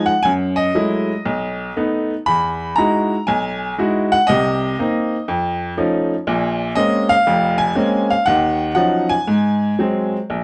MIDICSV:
0, 0, Header, 1, 2, 480
1, 0, Start_track
1, 0, Tempo, 505051
1, 234, Time_signature, 4, 2, 24, 8
1, 4556, Tempo, 496278
1, 8396, Tempo, 511945
1, 9966, End_track
2, 0, Start_track
2, 0, Title_t, "Upright piano"
2, 0, Program_c, 0, 0
2, 0, Note_on_c, 0, 53, 54
2, 0, Note_on_c, 0, 56, 52
2, 0, Note_on_c, 0, 63, 59
2, 55, Note_on_c, 0, 78, 85
2, 96, Note_off_c, 0, 53, 0
2, 99, Note_off_c, 0, 56, 0
2, 102, Note_off_c, 0, 63, 0
2, 215, Note_on_c, 0, 80, 98
2, 225, Note_off_c, 0, 78, 0
2, 238, Note_on_c, 0, 42, 69
2, 290, Note_off_c, 0, 80, 0
2, 532, Note_on_c, 0, 75, 78
2, 653, Note_off_c, 0, 42, 0
2, 712, Note_on_c, 0, 54, 50
2, 716, Note_on_c, 0, 57, 44
2, 717, Note_on_c, 0, 56, 49
2, 717, Note_on_c, 0, 64, 58
2, 1055, Note_off_c, 0, 54, 0
2, 1057, Note_off_c, 0, 57, 0
2, 1058, Note_off_c, 0, 56, 0
2, 1058, Note_off_c, 0, 64, 0
2, 1193, Note_on_c, 0, 35, 67
2, 1614, Note_off_c, 0, 35, 0
2, 1678, Note_on_c, 0, 57, 53
2, 1680, Note_on_c, 0, 59, 46
2, 1682, Note_on_c, 0, 63, 56
2, 1956, Note_off_c, 0, 75, 0
2, 2023, Note_off_c, 0, 57, 0
2, 2025, Note_off_c, 0, 59, 0
2, 2025, Note_off_c, 0, 63, 0
2, 2150, Note_on_c, 0, 83, 96
2, 2167, Note_on_c, 0, 40, 66
2, 2584, Note_off_c, 0, 40, 0
2, 2620, Note_on_c, 0, 82, 85
2, 2642, Note_on_c, 0, 56, 49
2, 2644, Note_on_c, 0, 63, 48
2, 2644, Note_on_c, 0, 64, 47
2, 2646, Note_on_c, 0, 66, 54
2, 2652, Note_off_c, 0, 83, 0
2, 2985, Note_off_c, 0, 56, 0
2, 2985, Note_off_c, 0, 63, 0
2, 2986, Note_off_c, 0, 64, 0
2, 2987, Note_off_c, 0, 66, 0
2, 3106, Note_on_c, 0, 80, 76
2, 3118, Note_on_c, 0, 35, 72
2, 3124, Note_off_c, 0, 82, 0
2, 3533, Note_off_c, 0, 35, 0
2, 3555, Note_off_c, 0, 80, 0
2, 3596, Note_on_c, 0, 56, 53
2, 3600, Note_on_c, 0, 63, 51
2, 3603, Note_on_c, 0, 64, 50
2, 3604, Note_on_c, 0, 66, 60
2, 3914, Note_on_c, 0, 78, 100
2, 3936, Note_off_c, 0, 56, 0
2, 3939, Note_off_c, 0, 63, 0
2, 3940, Note_off_c, 0, 64, 0
2, 3940, Note_off_c, 0, 66, 0
2, 4057, Note_on_c, 0, 75, 93
2, 4060, Note_off_c, 0, 78, 0
2, 4079, Note_on_c, 0, 36, 67
2, 4083, Note_on_c, 0, 48, 70
2, 4495, Note_off_c, 0, 36, 0
2, 4497, Note_off_c, 0, 48, 0
2, 4552, Note_on_c, 0, 58, 55
2, 4555, Note_on_c, 0, 60, 46
2, 4562, Note_on_c, 0, 63, 56
2, 4898, Note_off_c, 0, 58, 0
2, 4900, Note_off_c, 0, 60, 0
2, 4903, Note_off_c, 0, 63, 0
2, 4990, Note_off_c, 0, 75, 0
2, 5028, Note_on_c, 0, 41, 71
2, 5449, Note_off_c, 0, 41, 0
2, 5503, Note_on_c, 0, 57, 49
2, 5504, Note_on_c, 0, 53, 53
2, 5508, Note_on_c, 0, 61, 54
2, 5508, Note_on_c, 0, 63, 62
2, 5850, Note_off_c, 0, 57, 0
2, 5851, Note_off_c, 0, 53, 0
2, 5853, Note_off_c, 0, 61, 0
2, 5853, Note_off_c, 0, 63, 0
2, 5985, Note_on_c, 0, 34, 76
2, 5986, Note_on_c, 0, 46, 73
2, 6404, Note_off_c, 0, 34, 0
2, 6405, Note_off_c, 0, 46, 0
2, 6453, Note_on_c, 0, 75, 85
2, 6463, Note_on_c, 0, 56, 54
2, 6464, Note_on_c, 0, 60, 46
2, 6468, Note_on_c, 0, 58, 50
2, 6468, Note_on_c, 0, 61, 57
2, 6780, Note_on_c, 0, 77, 109
2, 6798, Note_off_c, 0, 75, 0
2, 6808, Note_off_c, 0, 56, 0
2, 6809, Note_off_c, 0, 60, 0
2, 6811, Note_off_c, 0, 58, 0
2, 6811, Note_off_c, 0, 61, 0
2, 6947, Note_on_c, 0, 41, 68
2, 6948, Note_on_c, 0, 29, 71
2, 7233, Note_off_c, 0, 77, 0
2, 7251, Note_on_c, 0, 80, 97
2, 7366, Note_off_c, 0, 29, 0
2, 7366, Note_off_c, 0, 41, 0
2, 7416, Note_on_c, 0, 56, 55
2, 7420, Note_on_c, 0, 60, 53
2, 7421, Note_on_c, 0, 58, 51
2, 7427, Note_on_c, 0, 61, 60
2, 7758, Note_on_c, 0, 77, 83
2, 7759, Note_off_c, 0, 80, 0
2, 7766, Note_off_c, 0, 56, 0
2, 7768, Note_off_c, 0, 60, 0
2, 7769, Note_off_c, 0, 58, 0
2, 7772, Note_off_c, 0, 61, 0
2, 7900, Note_off_c, 0, 77, 0
2, 7905, Note_on_c, 0, 78, 97
2, 7920, Note_on_c, 0, 39, 67
2, 7921, Note_on_c, 0, 51, 68
2, 8337, Note_off_c, 0, 39, 0
2, 8338, Note_off_c, 0, 51, 0
2, 8358, Note_off_c, 0, 78, 0
2, 8380, Note_on_c, 0, 78, 83
2, 8389, Note_on_c, 0, 53, 53
2, 8390, Note_on_c, 0, 54, 46
2, 8393, Note_on_c, 0, 63, 59
2, 8396, Note_on_c, 0, 61, 48
2, 8705, Note_on_c, 0, 80, 95
2, 8722, Note_off_c, 0, 78, 0
2, 8731, Note_off_c, 0, 53, 0
2, 8732, Note_off_c, 0, 54, 0
2, 8733, Note_off_c, 0, 63, 0
2, 8735, Note_off_c, 0, 61, 0
2, 8875, Note_on_c, 0, 44, 67
2, 9294, Note_off_c, 0, 44, 0
2, 9356, Note_on_c, 0, 54, 50
2, 9360, Note_on_c, 0, 56, 48
2, 9366, Note_on_c, 0, 60, 59
2, 9640, Note_off_c, 0, 80, 0
2, 9700, Note_off_c, 0, 54, 0
2, 9702, Note_off_c, 0, 56, 0
2, 9705, Note_off_c, 0, 60, 0
2, 9834, Note_on_c, 0, 34, 61
2, 9966, Note_off_c, 0, 34, 0
2, 9966, End_track
0, 0, End_of_file